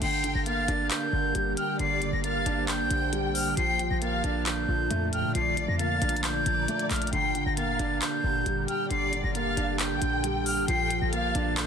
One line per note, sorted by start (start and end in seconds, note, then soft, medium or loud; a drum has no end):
0.02 0.34 G1 loud
0.02 10.64 D3 medium
0.02 0.23 D3 medium
0.02 3.54 A#3 medium
0.02 3.54 G4 medium
0.02 1.78 A#4 medium
0.02 0.43 G5 loud
0.02 0.33 C7 loud
0.02 closed hi-hat medium
0.02 crash loud
0.24 1.11 D3 medium
0.24 closed hi-hat medium
0.35 0.67 G1 loud
0.35 0.45 A#6 medium
0.46 1.57 A#3 medium
0.46 0.88 F5 medium
0.46 0.88 A6 medium
0.46 closed hi-hat medium
0.68 0.90 G1 loud
0.68 1.79 D4 loud
0.68 closed hi-hat medium
0.91 1.53 G6 medium
0.91 clap loud
0.91 closed hi-hat medium
1.13 1.34 G1 loud
1.13 1.78 D3 medium
1.35 1.56 G1 loud
1.35 2.46 G3 medium
1.35 closed hi-hat medium
1.57 1.78 G5 medium
1.57 1.77 F6 medium
1.57 closed hi-hat medium
1.79 2.11 G1 loud
1.79 2.00 D3 medium
1.79 3.55 C5 medium
1.79 2.21 D5 loud
1.79 2.11 C7 loud
1.79 closed hi-hat medium
2.02 2.89 D3 medium
2.02 closed hi-hat medium
2.13 2.45 G1 loud
2.13 2.23 A#6 medium
2.24 3.35 A#3 medium
2.24 2.66 F5 loud
2.24 2.66 A6 medium
2.24 closed hi-hat medium
2.46 2.81 G1 loud
2.46 3.57 D4 loud
2.46 closed hi-hat medium
2.68 3.53 G5 medium
2.68 3.10 G6 loud
2.68 clap loud
2.68 closed hi-hat medium
2.79 2.90 A#1 loud
2.91 3.55 A#1 loud
2.91 3.57 D3 medium
2.91 closed hi-hat medium
3.13 3.57 G3 loud
3.13 closed hi-hat medium
3.35 3.55 F6 medium
3.35 open hi-hat medium
3.57 3.89 A#1 loud
3.57 7.09 A#2 medium
3.57 3.78 F3 loud
3.57 7.09 F4 medium
3.57 5.33 A4 medium
3.57 3.99 G5 loud
3.57 3.89 C7 loud
3.57 closed hi-hat medium
3.79 4.67 F3 medium
3.79 closed hi-hat medium
3.91 4.23 A#1 loud
3.91 4.01 A#6 medium
4.01 5.13 A#3 medium
4.01 4.43 F5 loud
4.01 4.43 A6 medium
4.01 closed hi-hat medium
4.24 4.67 A#1 loud
4.24 5.35 D4 loud
4.24 closed hi-hat medium
4.46 5.09 G6 loud
4.46 clap loud
4.46 closed hi-hat medium
4.68 4.90 A#1 loud
4.68 5.34 F3 medium
4.91 5.25 F2 loud
4.91 6.02 A3 loud
4.91 closed hi-hat medium
5.13 5.34 G5 medium
5.13 5.33 F6 medium
5.13 closed hi-hat medium
5.24 5.34 A#2 loud
5.35 5.67 A#1 loud
5.35 5.56 F3 loud
5.35 5.77 D5 loud
5.35 8.87 A#5 medium
5.35 5.66 C7 loud
5.35 closed hi-hat medium
5.57 6.45 F3 medium
5.57 closed hi-hat medium
5.68 6.00 F2 loud
5.68 5.78 A#6 medium
5.79 6.91 A#3 medium
5.79 6.21 F5 medium
5.79 6.21 A6 medium
5.79 closed hi-hat medium
6.02 6.44 A#1 loud
6.02 7.13 D4 medium
6.02 closed hi-hat medium
6.09 closed hi-hat medium
6.17 closed hi-hat medium
6.24 7.09 D5 medium
6.24 6.87 G6 loud
6.24 clap loud
6.24 closed hi-hat medium
6.46 6.67 A#1 loud
6.46 7.13 F3 medium
6.46 closed hi-hat medium
6.68 7.13 A3 medium
6.68 closed hi-hat medium
6.79 closed hi-hat soft
6.91 7.12 A#1 loud
6.91 7.11 F6 medium
6.91 clap medium
6.91 closed hi-hat soft
6.91 open hi-hat medium
6.96 closed hi-hat medium
7.02 closed hi-hat medium
7.07 closed hi-hat medium
7.13 7.45 G1 loud
7.13 11.67 A#2 medium
7.13 7.34 D3 medium
7.13 10.65 G4 medium
7.13 7.55 G5 loud
7.13 7.44 C7 loud
7.13 closed hi-hat medium
7.35 8.22 D3 medium
7.35 closed hi-hat medium
7.46 7.78 G1 loud
7.46 7.56 A#6 medium
7.57 8.68 A#3 medium
7.57 7.99 F5 medium
7.57 7.99 A6 medium
7.57 closed hi-hat medium
7.79 8.01 G1 loud
7.79 8.91 D4 loud
7.79 closed hi-hat medium
8.02 8.64 G6 loud
8.02 clap loud
8.02 closed hi-hat medium
8.24 8.45 G1 loud
8.24 8.89 D3 medium
8.46 8.67 G1 loud
8.46 9.57 G3 medium
8.46 closed hi-hat medium
8.68 8.89 G5 medium
8.68 8.89 F6 medium
8.68 closed hi-hat medium
8.90 9.23 G1 loud
8.90 9.11 D3 medium
8.90 11.67 A4 medium
8.90 9.32 D5 loud
8.90 9.22 C7 loud
8.90 closed hi-hat medium
9.13 10.00 D3 medium
9.13 closed hi-hat medium
9.24 9.56 G1 loud
9.24 9.34 A#6 medium
9.35 10.46 A#3 medium
9.35 9.77 F5 loud
9.35 9.77 A6 medium
9.35 closed hi-hat medium
9.57 9.92 G1 loud
9.57 10.68 D4 loud
9.57 closed hi-hat medium
9.79 10.64 G5 medium
9.79 10.20 G6 loud
9.79 clap loud
9.79 closed hi-hat medium
9.91 10.01 A#1 loud
10.02 10.66 A#1 loud
10.02 10.68 D3 medium
10.02 closed hi-hat medium
10.24 10.68 G3 medium
10.24 closed hi-hat medium
10.46 10.66 F6 medium
10.46 open hi-hat medium
10.68 11.00 A#1 loud
10.68 11.67 D3 medium
10.68 10.89 F3 loud
10.68 11.67 F4 medium
10.68 11.10 G5 loud
10.68 11.00 C7 loud
10.68 closed hi-hat medium
10.91 11.67 F3 medium
10.91 closed hi-hat medium
11.02 11.34 A#1 loud
11.02 11.12 A#6 medium
11.13 11.67 A#3 medium
11.13 11.54 F5 loud
11.13 11.55 A6 medium
11.13 closed hi-hat medium
11.35 11.67 A#1 loud
11.35 11.67 D4 loud
11.35 closed hi-hat medium
11.57 11.67 G6 loud
11.57 clap loud
11.57 closed hi-hat medium